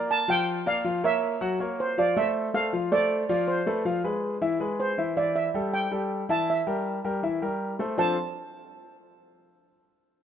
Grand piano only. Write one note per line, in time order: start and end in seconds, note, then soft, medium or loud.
0.00 0.21 A#3 medium
0.00 0.21 A#4 medium
0.00 0.22 D5 medium
0.28 0.59 F3 medium
0.28 0.59 F4 medium
0.28 0.59 F5 medium
0.66 0.81 A#3 medium
0.66 0.82 A#4 medium
0.66 0.82 D5 medium
0.84 1.00 F3 medium
0.84 1.00 F4 medium
0.84 1.00 F5 medium
1.04 1.34 A#3 medium
1.04 1.34 A#4 medium
1.04 1.35 C#5 medium
1.41 1.56 F#3 medium
1.41 1.57 F#4 medium
1.41 1.57 F#5 medium
1.60 1.91 A#3 medium
1.60 1.91 A#4 medium
1.60 1.91 C#5 medium
1.98 2.13 F3 medium
1.98 2.13 F4 medium
1.98 2.13 F5 medium
2.16 2.47 A3 medium
2.16 2.47 A4 medium
2.16 2.47 C5 medium
2.54 2.69 A3 medium
2.54 2.70 A4 medium
2.54 2.70 C5 medium
2.73 2.88 F3 medium
2.73 2.88 F4 medium
2.73 2.89 F5 medium
2.92 3.22 A3 medium
2.92 3.23 A4 medium
2.92 3.23 C5 medium
3.29 3.60 F3 medium
3.29 3.60 F4 medium
3.29 3.60 F5 medium
3.67 3.82 A3 medium
3.67 3.82 A4 medium
3.67 3.82 B4 medium
3.85 4.00 F3 medium
3.85 4.01 F4 medium
3.85 4.01 F5 medium
4.04 4.35 G#3 medium
4.04 4.35 G#4 medium
4.04 4.35 B4 medium
4.41 4.57 E3 medium
4.41 4.57 E4 medium
4.41 4.57 E5 medium
4.60 4.91 G#3 medium
4.60 4.91 G#4 medium
4.60 4.91 B4 medium
4.98 5.13 E3 medium
4.98 5.13 E4 medium
4.98 5.13 E5 medium
5.17 5.47 E3 medium
5.17 5.47 E4 medium
5.17 5.48 E5 medium
5.54 5.85 G3 medium
5.54 5.85 G4 medium
5.54 5.85 A4 medium
5.91 6.22 G3 medium
5.91 6.22 G4 medium
5.91 6.23 A4 medium
6.29 6.60 E3 medium
6.29 6.60 E4 medium
6.29 6.60 E5 medium
6.67 6.97 G3 medium
6.67 6.98 G4 medium
6.67 6.98 A#4 medium
7.04 7.20 G3 medium
7.04 7.20 G4 medium
7.04 7.20 A#4 medium
7.23 7.38 E3 medium
7.23 7.39 E4 medium
7.23 7.39 E5 medium
7.42 7.73 G3 medium
7.42 7.73 G4 medium
7.42 7.73 A#4 medium
7.79 7.95 A3 medium
7.79 7.95 A4 medium
7.79 7.95 C5 medium
7.98 8.15 F3 medium
7.98 8.15 C4 medium
7.98 8.15 D4 medium
7.98 8.16 F4 medium
7.98 8.16 A4 medium
7.98 8.16 C5 medium